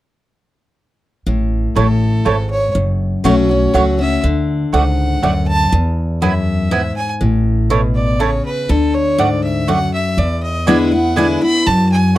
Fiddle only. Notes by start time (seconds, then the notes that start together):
1.76 A4
2.50 C#5
3.25 C#5
4.00 E5
4.73 F#5
5.48 A5
6.22 E5
6.96 G#5
7.96 D5
8.20 C#5
8.45 B4
8.70 A4
8.94 C#5
9.19 D5
9.44 E5
9.69 F#5
9.94 E5
10.19 D5
10.43 D#5
10.68 E5
10.93 F#5
11.18 G#5
11.43 B5
11.67 A5
11.92 G#5